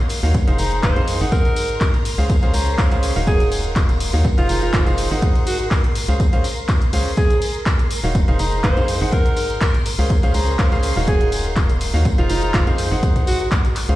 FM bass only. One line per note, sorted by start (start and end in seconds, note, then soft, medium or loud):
0.23 0.45 D#2 medium
0.48 0.57 F1 medium
0.59 0.81 F1 loud
0.83 0.94 F1 loud
0.96 1.18 F2 loud
1.21 2.16 G#1 medium
2.18 2.40 C#2 loud
2.43 2.52 C#2 loud
2.54 2.76 C#2 loud
2.78 2.89 C#2 loud
2.91 3.13 C#2 loud
3.16 4.11 D#1 medium
4.13 4.35 D#2 loud
4.38 4.47 F1 loud
4.49 4.71 F1 loud
4.74 4.84 F1 loud
4.87 5.08 F1 loud
5.11 6.06 G#1 loud
6.09 6.30 C#2 medium
6.33 6.40 C#2 loud
6.93 7.07 C#2 loud
8.04 8.25 D#1 loud
8.28 8.37 F1 loud
8.39 8.62 F1 loud
8.64 8.74 F1 loud
8.77 8.99 F2 loud
9.01 9.96 G#1 loud
9.99 10.21 C#2 medium
10.23 10.32 C#2 loud
10.35 10.57 C#2 loud
10.59 10.69 C#2 loud
10.72 10.94 C#2 loud
10.96 11.91 D#1 loud
11.94 12.16 D#2 medium
12.18 12.27 F1 loud
12.30 12.52 F1 loud
12.54 12.64 F1 loud
12.67 12.89 F2 loud
12.91 13.86 G#1 medium
13.89 13.96 C#2 loud